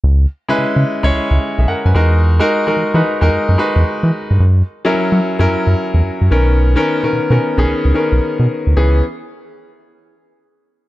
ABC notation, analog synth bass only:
X:1
M:4/4
L:1/16
Q:"Swing 16ths" 1/4=110
K:C#dor
V:1 name="Analog synth bass" clef=bass
C,,2 z C, C, C, z C,, C,, C,, z B,,, F,, F,, E,,2- | E,,2 z E, E, E, z E,, F,, F,, z E,, z E, z =G,, | F,,2 z F, F, F, z F,, F,, F,, z E,, F,, F,, B,,,2- | B,,,2 z B,, B,, B,, z B,,, C,, C,, z B,,, z B,, z =D,, |
C,,2 z12 z2 |]